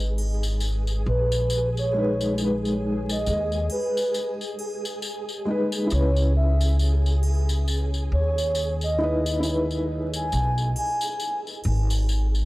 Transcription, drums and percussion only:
0.00 tambourine soft
0.18 triangle medium
0.43 tambourine medium
0.60 tambourine medium
0.87 tambourine soft
1.32 tambourine medium
1.50 tambourine medium
1.77 tambourine soft
2.21 tambourine medium
2.38 tambourine medium
2.65 tambourine soft
3.09 tambourine medium
3.26 tambourine medium
3.52 tambourine soft
3.70 triangle medium
3.97 tambourine medium
4.14 tambourine medium
4.41 tambourine soft
4.59 triangle medium
4.85 tambourine medium
5.02 tambourine medium
5.29 tambourine soft
5.72 tambourine medium
5.90 tambourine medium
6.16 tambourine soft
6.61 tambourine medium
6.79 tambourine medium
7.06 tambourine soft
7.23 triangle medium
7.49 tambourine medium
7.68 tambourine medium
7.94 tambourine soft
8.38 tambourine medium
8.55 tambourine medium
8.81 tambourine soft
9.26 tambourine medium
9.43 tambourine medium
9.71 tambourine soft
10.13 tambourine medium
10.32 tambourine medium
10.58 tambourine soft
10.76 triangle medium
11.01 tambourine medium
11.20 tambourine medium
11.47 tambourine soft
11.64 triangle medium
11.90 tambourine medium
11.90 triangle medium
12.09 tambourine medium
12.35 tambourine soft

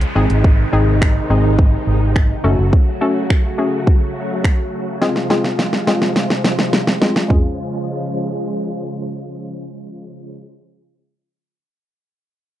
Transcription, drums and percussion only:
0.01 closed hi-hat medium
0.30 closed hi-hat medium
0.44 kick loud
1.02 finger snap loud
1.02 kick loud
1.59 kick loud
2.16 finger snap loud
2.16 kick loud
2.73 kick loud
3.30 finger snap loud
3.30 kick loud
3.87 kick loud
4.44 finger snap loud
4.44 kick loud
5.02 snare soft
5.16 snare soft
5.30 snare medium
5.44 snare medium
5.59 snare medium
5.73 snare medium
5.87 snare medium
6.02 snare medium
6.16 snare medium
6.30 snare medium
6.44 snare medium
6.59 snare medium
6.73 snare medium
6.87 snare medium
7.02 snare medium
7.16 snare medium
7.30 kick medium
7.30 floor tom medium

